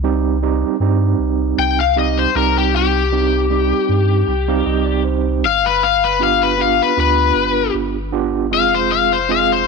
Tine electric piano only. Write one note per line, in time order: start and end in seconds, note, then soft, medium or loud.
0.04 0.36 G3 medium
0.04 0.37 C4 medium
0.04 0.37 D#4 medium
0.04 0.37 G4 medium
0.42 0.75 G3 medium
0.42 0.75 C4 medium
0.42 0.75 D#4 medium
0.42 0.75 G4 medium
0.81 1.79 G3 medium
0.81 1.79 C4 medium
0.81 1.79 D#4 medium
0.81 1.79 G4 medium
1.96 2.29 G3 medium
1.96 2.29 C4 medium
1.96 2.29 D#4 medium
1.96 2.29 G4 medium
2.35 3.00 G3 medium
2.35 3.01 C4 medium
2.35 3.01 D#4 medium
2.35 3.01 G4 medium
3.12 3.45 G3 medium
3.12 3.45 C4 medium
3.12 3.45 D#4 medium
3.12 3.45 G4 medium
3.50 4.31 G3 medium
3.50 4.31 C4 medium
3.50 4.32 D#4 medium
3.50 4.32 G4 medium
4.28 4.47 G5 medium
4.48 5.43 G3 medium
4.48 5.43 C4 medium
4.48 5.43 D#4 medium
4.48 5.44 G4 loud
4.48 4.65 F5 medium
4.66 4.85 D#5 medium
4.86 5.03 D5 medium
5.04 5.40 C5 medium
6.19 6.53 B3 medium
6.19 6.53 D4 medium
6.19 6.53 F4 medium
6.19 6.53 G4 medium
6.57 6.91 B3 medium
6.57 6.91 D4 medium
6.57 6.91 F4 medium
6.57 6.92 G4 medium
6.97 7.95 B3 medium
6.97 7.95 D4 medium
6.97 7.95 F4 medium
6.97 7.96 G4 medium
8.12 8.45 B3 medium
8.12 8.45 D4 medium
8.12 8.46 F4 medium
8.12 8.46 G4 medium
8.51 9.17 G#3 medium
8.51 9.17 C4 medium
8.51 9.17 F4 medium
8.51 9.17 G#4 medium
9.29 9.61 G#3 medium
9.29 9.62 C4 medium
9.29 9.62 F4 medium
9.29 9.62 G#4 medium